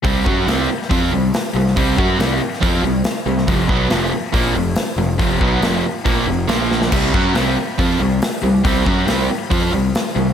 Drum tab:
CC |----------------|----------------|----------------|----------------|
HH |o---o---o---o---|o---o---o---o---|o---o---o---o---|o---o---o---o---|
SD |----o--o----o--o|----o--o----o--o|----o-------o---|----o-------o-oo|
BD |o-o-----o-------|o-o-----o-------|o-o-----o-------|o-o-----o-------|

CC |x---------------|----------------|
HH |o---o---o---o---|o---o---o---o---|
SD |----o-------o---|----o-------o---|
BD |o-o-----o-------|o-o-----o-------|